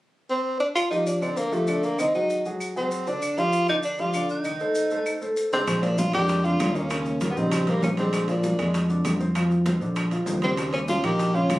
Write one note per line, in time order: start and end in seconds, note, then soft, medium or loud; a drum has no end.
0.30 0.59 C4 medium
0.60 0.67 D4 medium
0.76 0.90 F4 medium
0.76 claves medium
0.76 maracas medium
0.90 1.16 F3 medium
0.90 1.05 D#4 medium
0.90 1.17 F4 medium
0.90 1.17 G4 medium
0.90 maracas soft
1.06 1.23 D4 medium
1.06 maracas medium
1.22 1.47 D3 medium
1.22 1.39 C4 medium
1.22 1.47 D4 medium
1.22 1.47 D5 medium
1.22 claves medium
1.22 maracas soft
1.37 1.54 A#3 medium
1.37 maracas medium
1.52 1.65 F3 medium
1.52 1.85 A3 medium
1.52 1.65 F4 medium
1.52 1.65 G4 medium
1.52 maracas soft
1.67 1.93 D3 medium
1.67 1.94 D4 medium
1.67 1.94 D5 medium
1.67 claves medium
1.67 maracas medium
1.83 2.01 A#3 medium
1.83 maracas soft
1.99 2.12 D#3 medium
1.99 2.14 C4 medium
1.99 2.12 D#4 medium
1.99 2.12 D#5 medium
1.99 claves medium
1.99 maracas medium
2.15 2.40 F#3 medium
2.15 2.43 D#4 medium
2.15 2.40 F#4 medium
2.15 2.40 G#4 medium
2.15 maracas soft
2.30 maracas medium
2.45 2.71 F#3 medium
2.45 2.71 F#4 medium
2.45 2.71 G#4 medium
2.45 maracas soft
2.60 claves medium
2.60 maracas medium
2.76 3.01 F#3 medium
2.76 3.09 C4 medium
2.76 3.01 F#4 medium
2.76 3.01 G#4 medium
2.76 maracas soft
2.91 maracas medium
3.07 3.32 D3 medium
3.07 3.32 D4 medium
3.07 3.40 D4 medium
3.07 3.32 D5 medium
3.07 maracas soft
3.22 claves medium
3.22 maracas medium
3.37 3.63 F3 medium
3.37 3.63 F4 medium
3.37 3.69 F4 loud
3.37 3.63 G4 medium
3.37 maracas soft
3.53 maracas medium
3.68 3.94 D3 medium
3.68 3.94 D4 medium
3.68 3.76 D#4 medium
3.68 3.94 D5 medium
3.68 claves medium
3.68 maracas soft
3.83 4.01 D4 medium
3.83 maracas medium
3.98 4.12 F3 medium
3.98 4.12 F4 medium
3.98 4.30 F4 medium
3.98 4.12 G4 medium
3.98 maracas soft
4.14 4.40 D3 medium
4.14 4.40 D4 medium
4.14 4.40 D5 medium
4.14 claves medium
4.14 maracas medium
4.29 5.33 D#4 medium
4.29 maracas soft
4.44 4.58 D#3 medium
4.44 4.58 D#4 medium
4.44 4.58 D#5 medium
4.44 claves medium
4.44 maracas medium
4.60 4.86 A3 medium
4.60 4.86 A4 medium
4.60 4.86 C5 medium
4.60 maracas soft
4.75 maracas medium
4.90 5.16 A3 medium
4.90 5.16 A4 medium
4.90 5.17 C5 medium
4.90 maracas soft
5.06 claves medium
5.06 maracas medium
5.21 5.47 A3 medium
5.21 5.47 A4 medium
5.21 5.47 C5 medium
5.21 maracas soft
5.37 maracas medium
5.52 5.65 D3 medium
5.52 5.85 G#3 medium
5.52 5.84 C4 medium
5.52 5.65 D4 medium
5.52 5.65 D5 medium
5.52 maracas soft
5.67 6.10 A#1 medium
5.67 high bongo medium
5.67 high conga soft
5.67 high timbale medium
5.67 claves medium
5.67 maracas medium
5.82 6.08 F3 medium
5.82 6.00 A#3 medium
5.82 6.00 D4 medium
5.82 6.08 F4 medium
5.82 high bongo soft
5.82 high conga soft
5.82 high timbale medium
5.82 maracas soft
5.98 6.14 D4 medium
5.98 6.14 F4 medium
5.98 high bongo medium
5.98 high conga medium
5.98 low timbale medium
5.98 maracas medium
6.13 6.57 F2 medium
6.13 6.39 G#3 medium
6.13 6.45 D4 medium
6.13 6.46 G4 loud
6.13 6.39 A#4 medium
6.13 high conga soft
6.13 high timbale medium
6.13 claves medium
6.13 maracas soft
6.29 high bongo medium
6.29 high conga soft
6.29 high timbale medium
6.29 maracas medium
6.44 6.70 D3 medium
6.44 6.70 D4 medium
6.44 6.76 D4 medium
6.44 6.77 F4 medium
6.44 high bongo soft
6.44 high conga soft
6.44 maracas soft
6.60 7.31 D#2 medium
6.60 high bongo soft
6.60 low bongo medium
6.60 high conga medium
6.60 high timbale medium
6.60 low timbale medium
6.60 claves medium
6.60 maracas medium
6.74 7.21 A#3 medium
6.74 6.88 A#3 medium
6.74 7.21 C#4 medium
6.74 6.88 A#4 medium
6.74 high bongo soft
6.74 maracas soft
6.90 7.16 C#3 medium
6.90 7.16 C#4 medium
6.90 high bongo medium
6.90 high conga soft
6.90 high timbale medium
6.90 claves medium
6.90 maracas medium
7.06 high bongo soft
7.06 high conga soft
7.06 maracas soft
7.21 7.34 A#3 medium
7.21 7.34 A#4 medium
7.21 high bongo medium
7.21 high conga medium
7.21 high timbale medium
7.21 low timbale medium
7.21 maracas medium
7.29 7.38 G3 medium
7.29 7.39 B3 medium
7.36 7.79 A#1 medium
7.36 7.62 C#3 medium
7.36 7.68 G3 medium
7.36 7.71 C4 medium
7.36 7.62 D#4 medium
7.36 high conga soft
7.36 maracas soft
7.52 high bongo medium
7.52 high conga soft
7.52 high timbale medium
7.52 claves medium
7.52 maracas medium
7.67 7.92 G3 medium
7.67 7.83 G3 medium
7.67 7.83 A#3 medium
7.67 7.93 G4 medium
7.67 high bongo soft
7.67 high conga soft
7.67 high timbale medium
7.67 maracas soft
7.82 8.54 A#1 medium
7.82 7.90 A#3 medium
7.82 7.90 C#4 medium
7.82 high bongo soft
7.82 low bongo medium
7.82 high conga medium
7.82 low timbale medium
7.82 maracas medium
7.97 8.23 D3 medium
7.97 8.31 G#3 medium
7.97 8.32 C4 medium
7.97 8.23 D4 medium
7.97 high bongo soft
7.97 high conga medium
7.97 high timbale medium
7.97 maracas soft
8.13 high bongo medium
8.13 high conga soft
8.13 high timbale medium
8.13 claves medium
8.13 maracas medium
8.28 8.54 F3 medium
8.28 8.75 A#3 medium
8.28 8.75 D4 medium
8.28 8.54 F4 medium
8.28 high bongo soft
8.28 high conga soft
8.28 high timbale medium
8.28 maracas soft
8.44 high bongo medium
8.44 high conga medium
8.44 low timbale medium
8.44 maracas medium
8.59 9.02 F2 medium
8.59 8.84 G#3 medium
8.59 8.84 G#4 medium
8.59 high conga soft
8.59 high timbale medium
8.59 claves medium
8.59 maracas soft
8.74 high bongo medium
8.74 high conga soft
8.74 high timbale medium
8.74 maracas medium
8.89 9.15 D3 medium
8.89 9.15 D4 medium
8.89 high bongo soft
8.89 high conga soft
8.89 maracas soft
9.05 9.77 F2 medium
9.05 high bongo soft
9.05 low bongo medium
9.05 high conga medium
9.05 high timbale medium
9.05 low timbale medium
9.05 claves medium
9.05 maracas medium
9.20 9.33 C4 medium
9.20 9.33 C5 medium
9.20 high bongo soft
9.20 high conga medium
9.20 maracas soft
9.35 9.61 F3 medium
9.35 9.61 F4 medium
9.35 high bongo medium
9.35 high conga soft
9.35 high timbale medium
9.35 claves medium
9.35 maracas medium
9.51 high bongo soft
9.51 high conga soft
9.51 maracas soft
9.66 9.79 C4 medium
9.66 9.79 C5 medium
9.66 high bongo medium
9.66 high conga medium
9.66 high timbale medium
9.66 low timbale medium
9.66 maracas medium
9.81 10.24 A#1 medium
9.81 10.07 D3 medium
9.81 10.07 D4 medium
9.81 maracas soft
9.96 high bongo medium
9.96 high conga soft
9.96 high timbale medium
9.96 claves medium
9.96 maracas medium
10.11 10.37 F3 medium
10.11 10.38 F4 medium
10.11 high bongo soft
10.11 high conga soft
10.11 high timbale medium
10.11 maracas soft
10.26 10.99 D#2 medium
10.26 high bongo soft
10.26 low bongo medium
10.26 high conga medium
10.26 low timbale medium
10.26 maracas medium
10.42 10.68 C#3 medium
10.42 10.71 G3 medium
10.42 10.68 A#3 medium
10.42 10.72 C4 medium
10.42 high bongo soft
10.42 high conga medium
10.42 high timbale medium
10.42 maracas soft
10.57 high bongo medium
10.57 high conga soft
10.57 high timbale medium
10.57 claves medium
10.57 maracas medium
10.73 10.99 G3 medium
10.73 10.80 A#3 medium
10.73 10.80 C#4 medium
10.73 10.99 G4 medium
10.73 high bongo soft
10.73 high conga soft
10.73 high timbale medium
10.73 maracas soft
10.88 11.05 C#4 medium
10.88 11.06 F4 medium
10.88 high bongo medium
10.88 high conga medium
10.88 low timbale medium
10.88 maracas medium
11.03 11.47 A#1 medium
11.03 11.30 A#3 medium
11.03 11.35 D#4 medium
11.03 11.36 G4 loud
11.03 11.30 A#4 medium
11.03 high conga soft
11.03 high timbale medium
11.03 claves medium
11.03 maracas soft
11.19 high bongo medium
11.19 high conga soft
11.19 high timbale medium
11.19 maracas medium
11.34 11.59 C#3 medium
11.34 11.59 C#4 medium
11.34 11.59 F4 medium
11.34 high bongo soft
11.34 high conga soft
11.34 maracas soft
11.50 11.59 D#2 medium
11.50 high bongo soft
11.50 low bongo medium
11.50 high conga medium
11.50 high timbale medium
11.50 low timbale medium
11.50 claves medium
11.50 maracas medium